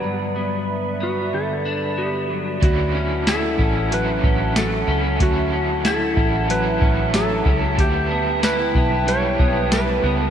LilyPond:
<<
  \new Staff \with { instrumentName = "Ambient pad" } { \time 4/4 \key d \major \tempo 4 = 93 << { <d'' b''>1 | <e'' a''>1~ | <e'' a''>1~ | <e'' a''>1 | } \\ { <b' e''>1 | <cis' fis''>1~ | <cis' fis''>1 | <b' g''>1 | } >> }
  \new Staff \with { instrumentName = "Electric slide guitar" } { \time 4/4 \key d \major r4. fis'8 a'4 g'8. r16 | fis'4 a'4 b'4 a'8. r16 | fis'4 a'4 b'4 a'8. r16 | g'4 b'4 cis''4 b'8. r16 | }
  \new Staff \with { instrumentName = "Clean electric guitar" } { \time 4/4 \key d \major <g, d fis b d'>8 b4 b8 d8 d'8 b8 fis8 | r8 cis'8 e'8 cis'8 fis8 cis'8 fis8 cis'8~ | cis'8 cis'8 e'8 cis'8 fis8 cis'8 fis8 cis'8 | r8 b8 e'8 b8 g8 b8 g8 b8 | }
  \new Staff \with { instrumentName = "Overdriven electric guitar" } { \time 4/4 \key d \major r1 | <d fis cis' e'>4. <fis cis' e'>8 <d fis cis' e'>4. <fis cis' e'>8 | <d fis cis' e'>4. <fis cis' e'>8 <d fis cis' e'>4. <fis cis' e'>8 | <d g b e'>2 <d g b e'>4. <g b e'>8 | }
  \new Staff \with { instrumentName = "Fingered electric bass" } { \clef bass \time 4/4 \key d \major r1 | d,4. a,,4 a,,4 cis,8 | d,4. a,,4 a,,4 cis,8 | d,4. b,,4 b,,4 cis,8 | }
  \new DrumStaff \with { instrumentName = "Drums" } \drummode { \time 4/4 r4 r4 r4 r4 | <hh bd>4 <hh sn tamb>8 bd8 hh8 bd8 <hh sn tamb>4 | <hh bd>4 <hh sn tamb>8 bd8 hh8 bd8 <hh sn tamb>8 bd8 | <hh bd>4 <hh sn tamb>8 bd8 hh8 bd8 <hh sn tamb>4 | }
>>